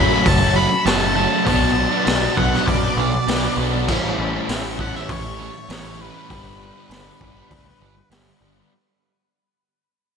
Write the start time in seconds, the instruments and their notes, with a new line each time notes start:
Already playing: overdriven electric guitar F#2 C#3 F#3 A3, string machine F#4 C#5 E5 A5, lead electric guitar B5
0.10 overdriven electric guitar F#3 A3 C#4
0.26 picked electric bass F#1, lead electric guitar A5, kick, open hi-hat
0.41 overdriven electric guitar F#3 A3 C#4, muted overdriven electric guitar stroke
0.55 overdriven electric guitar C#3 F#3 A3 C#4, lead electric guitar B5, muted overdriven electric guitar stroke
0.71 muted overdriven electric guitar stroke
0.85 picked electric bass F#1, overdriven electric guitar F#2 C#3 F#3 A3 C#4, lead electric guitar A5, snare, open hi-hat
1.15 overdriven electric guitar C#3 F#3 A3 C#4, lead electric guitar A5
1.30 overdriven electric guitar F#3 A3 C#4
1.44 picked electric bass B1, overdriven electric guitar B2 F#3 B3 D4, string machine B4 D5 A5, lead electric guitar A5, kick, open hi-hat
1.91 overdriven electric guitar F#3 B3 D4
2.06 picked electric bass B1, overdriven electric guitar B2 F#3 B3 D4, snare, open hi-hat
2.36 picked electric bass B1, overdriven electric guitar B2 F#3 B3 D4, lead electric guitar F#5, kick
2.52 overdriven electric guitar F#3 B3 D4, snare
2.67 picked electric bass F#2, lead electric guitar D5, kick, open hi-hat
2.83 overdriven electric guitar F#3 B3 D4, muted overdriven electric guitar stroke
2.97 picked electric bass B1, overdriven electric guitar B2 F#3 B3 D4, muted overdriven electric guitar stroke
3.14 muted overdriven electric guitar stroke
3.27 picked electric bass B1, overdriven electric guitar B2 F#3 B3 D4, snare, open hi-hat
3.57 picked electric bass B1, overdriven electric guitar B2 F#3 B3 D4
3.73 overdriven electric guitar F#3 B3 D4
3.88 picked electric bass A1, overdriven electric guitar A2 E3 G3 A3 C#4 E4, string machine G4 C#5 E5 A5, kick, crash
4.18 picked electric bass A1
4.33 overdriven electric guitar G3 C#4 E4
4.49 picked electric bass A1, overdriven electric guitar A2 E3 G3 C#4 E4, snare, open hi-hat
4.78 overdriven electric guitar E3 G3 C#4 E4, lead electric guitar F#5, kick
4.93 overdriven electric guitar G3 C#4 E4, lead electric guitar E5, snare
5.09 picked electric bass A1, lead electric guitar C#5, kick, open hi-hat
5.25 overdriven electric guitar G3 C#4 E4, muted overdriven electric guitar stroke
5.39 overdriven electric guitar E3 G3 C#4 E4, muted overdriven electric guitar stroke
5.54 muted overdriven electric guitar stroke
5.69 picked electric bass A1, overdriven electric guitar A2 E3 G3 C#4 E4, lead electric guitar C#5, snare, open hi-hat
5.99 overdriven electric guitar E3 G3 C#4 E4, lead electric guitar B4
6.15 overdriven electric guitar G3 C#4 E4
6.30 picked electric bass G1, overdriven electric guitar G2 D3 G3 B3 D4, string machine D5 F#5 B5, kick, open hi-hat
6.76 overdriven electric guitar G3 B3 D4
6.89 picked electric bass G1, overdriven electric guitar G2 D3, snare, open hi-hat
6.94 overdriven electric guitar G3 B3 D4
7.21 picked electric bass G1, overdriven electric guitar D3 G3 B3, kick
7.25 overdriven electric guitar D4
7.37 overdriven electric guitar G3 B3 D4
7.51 picked electric bass D2, kick, open hi-hat
7.66 overdriven electric guitar G3 B3 D4, muted overdriven electric guitar stroke
7.81 picked electric bass G1, overdriven electric guitar D3 G3 B3 D4, muted overdriven electric guitar stroke
7.97 muted overdriven electric guitar stroke
8.10 picked electric bass G1, overdriven electric guitar G2 D3 G3, snare, open hi-hat
8.14 overdriven electric guitar B3 D4
8.41 picked electric bass G1, overdriven electric guitar D3 G3 B3
8.45 overdriven electric guitar D4
8.59 overdriven electric guitar G3 B3 D4